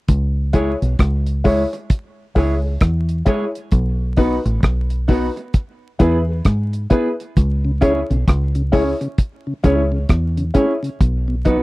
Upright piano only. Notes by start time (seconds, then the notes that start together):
0.53 E4 G#4 C#5
1.44 E4 G#4 C#5
2.35 E4 G#4 C#5
2.63 G#4 C#5
3.26 E4 G#4 C#5
4.17 D#4 F#4 B4
5.08 D#4 F#4 B4
5.99 E4 G#4 B4
6.28 G#4 B4
6.90 E4 G#4 B4
7.81 E4 G#4 C#5
8.72 E4 G#4 C#5
9.63 E4 G#4 C#5
9.92 G#4 C#5
10.54 E4 G#4 C#5
11.45 D#4 F#4 B4